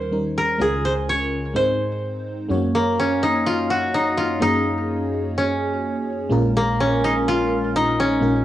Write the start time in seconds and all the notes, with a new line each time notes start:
Already playing: D#2 D#3 G3 C#4 D#4 A#4 C5
0.12 G3 C#4 D#4 A#4
0.38 A#4
0.58 C#2 C#3 G#3 C#4 F4 G#4 A#4
0.85 C5
1.09 C#5
1.54 G#2 G#3 C4 D#4 C5
2.49 F#2 G#3 C#4 F#4 C#5
2.54 A#3
2.75 A#3
3.00 C#4
3.23 D#4
3.46 F4
3.70 F#4
3.94 D#4
4.17 F4
4.40 F#2 A#3 C#4 D#4 F#4 G#4
5.38 C#4
6.30 A#1 A#2 G#3 C#4 F4 A#4
6.57 A#3
6.80 C#4
7.04 D#4
7.28 F4
7.76 D#4
8.00 C#4
8.20 A#1 A#2 G#3 C#4 F4 A#4